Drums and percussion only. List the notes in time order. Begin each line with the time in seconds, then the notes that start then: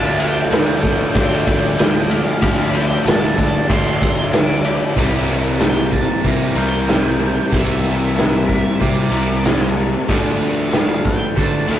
0.04 tambourine
0.19 ride, tambourine
0.35 tambourine
0.50 snare, ride, tambourine
0.67 tambourine
0.82 kick, ride, tambourine
1.15 kick, ride
1.47 kick, ride, tambourine
1.63 tambourine
1.77 snare, ride, tambourine
2.10 ride, tambourine
2.26 tambourine
2.42 kick, ride, tambourine
2.58 tambourine
2.74 ride, tambourine
2.89 tambourine
3.06 snare, ride, tambourine
3.37 kick, ride, tambourine
3.53 tambourine
3.69 kick, ride, tambourine
3.85 tambourine
4.00 kick, ride, tambourine
4.15 tambourine
4.31 snare, ride, tambourine
4.48 tambourine
4.64 ride, tambourine
4.81 tambourine
4.96 kick, open hi-hat
5.27 open hi-hat, tambourine
5.60 snare, open hi-hat, tambourine
5.92 kick, open hi-hat, tambourine
6.24 kick, open hi-hat, tambourine
6.55 open hi-hat, tambourine
6.88 snare, open hi-hat, tambourine
7.20 open hi-hat
7.52 kick, open hi-hat
7.83 open hi-hat, tambourine
8.15 snare, open hi-hat, tambourine
8.47 kick, open hi-hat, tambourine
8.81 kick, open hi-hat, tambourine
9.12 open hi-hat, tambourine
9.43 snare, open hi-hat, tambourine
9.77 open hi-hat
10.09 kick, open hi-hat
10.41 open hi-hat, tambourine
10.73 snare, open hi-hat, tambourine
11.05 kick, open hi-hat, tambourine
11.37 kick, open hi-hat, tambourine
11.69 snare, open hi-hat, tambourine